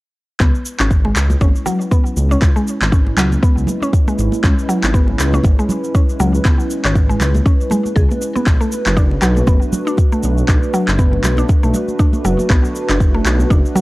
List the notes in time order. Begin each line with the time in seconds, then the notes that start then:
0.40 C#2 G#3 B3 C#4 E4 B4, kick, clap, muted conga, cabasa
0.55 cabasa
0.65 cabasa
0.80 G#1 C#4, clap, muted conga, cabasa
0.91 kick, cabasa
1.05 G#3, muted conga
1.16 C#2, clap, cabasa
1.30 muted conga, high conga, cabasa
1.41 G#1 C#4, kick, high conga, cabasa
1.55 cabasa
1.66 F#3, muted conga, high conga, low conga, cabasa
1.81 cabasa
1.91 B3, kick, muted conga, cabasa
2.06 cabasa
2.17 C#2, muted conga, high conga, cabasa
2.31 C#4, cabasa
2.41 C#2, kick, clap, muted conga, cabasa
2.56 G#3, cabasa
2.68 cabasa
2.81 G#1, clap, muted conga, cabasa
2.92 C#4, kick, cabasa
3.07 muted conga
3.17 C#2 F#3, clap, low conga, cabasa
3.32 muted conga, high conga, cabasa
3.43 B3, kick, cabasa
3.57 C#2, cabasa
3.67 muted conga, high conga, low conga, cabasa
3.82 C#4, high conga, cabasa
3.93 kick, muted conga, cabasa
4.08 G#3, high conga, cabasa
4.18 G#1, muted conga, cabasa
4.32 high conga, cabasa
4.44 C#2 C#4, kick, clap, muted conga, cabasa
4.59 cabasa
4.69 F#3, cabasa
4.83 G#1, clap, muted conga, cabasa
4.94 B3, kick, cabasa
5.08 muted conga
5.19 C#2, clap, cabasa
5.33 C#4, muted conga, high conga, cabasa
5.43 G#1, kick, high conga, cabasa
5.59 G#3, cabasa
5.69 muted conga, high conga, low conga, cabasa
5.84 cabasa
5.95 C#4, kick, muted conga, cabasa
6.09 cabasa
6.19 C#2 F#3, muted conga, high conga, cabasa
6.34 cabasa
6.44 C#2 B3, kick, clap, muted conga, cabasa
6.60 cabasa
6.70 cabasa
6.85 G#1 C#4, clap, muted conga, cabasa
6.95 kick, cabasa
7.09 G#3, muted conga, cabasa
7.20 C#2, clap, low conga, cabasa
7.35 muted conga, high conga, cabasa
7.46 C#4, kick, cabasa
7.61 cabasa
7.70 G#3, muted conga, high conga, low conga, cabasa
7.86 high conga, cabasa
7.96 C#2 G#4, kick, muted conga, cabasa
8.11 high conga, cabasa
8.22 muted conga, cabasa
8.36 B3, high conga, cabasa
8.46 B1 A3 D4 F#4, kick, clap, muted conga, cabasa
8.61 A3, cabasa
8.72 cabasa
8.86 F#1, clap, muted conga, cabasa
8.97 D4, kick, cabasa
9.11 muted conga
9.22 B1 F#3, clap, cabasa
9.37 muted conga, high conga, cabasa
9.47 F#1 B3, kick, high conga, cabasa
9.62 cabasa
9.73 muted conga, high conga, low conga, cabasa
9.87 D4, cabasa
9.97 kick, muted conga, cabasa
10.12 A3, cabasa
10.23 B1, muted conga, high conga, cabasa
10.38 cabasa
10.48 B1 D4, kick, clap, muted conga, cabasa
10.63 cabasa
10.74 F#3, cabasa
10.88 F#1, clap, muted conga, cabasa
10.99 B3, kick, cabasa
11.13 muted conga
11.24 B1, clap, low conga, cabasa
11.37 D4, muted conga, high conga, cabasa
11.49 kick, cabasa
11.63 B1 A3, cabasa
11.73 muted conga, high conga, low conga, cabasa
11.88 high conga, cabasa
11.99 D4, kick, muted conga, cabasa
12.13 high conga, cabasa
12.24 F#1 F#3, muted conga, cabasa
12.39 high conga, cabasa
12.50 B1 B3, kick, clap, muted conga, cabasa
12.65 cabasa
12.75 cabasa
12.89 F#1 D4, clap, muted conga, cabasa
13.00 kick, cabasa
13.14 A3, muted conga
13.25 B1, clap, cabasa
13.40 muted conga, high conga, cabasa
13.50 F#1 D4, kick, high conga, cabasa
13.66 cabasa
13.75 F#3, muted conga, high conga, low conga, cabasa